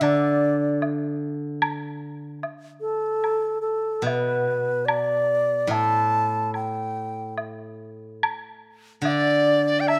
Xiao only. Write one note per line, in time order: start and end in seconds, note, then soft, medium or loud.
0.03 0.82 D5 medium
2.81 3.59 A4 medium
3.61 4.05 A4 medium
4.04 4.87 B4 medium
4.85 5.73 D5 medium
5.71 6.53 A5 medium
6.55 7.34 G5 medium
9.04 9.91 D5 loud
9.89 9.99 E5 medium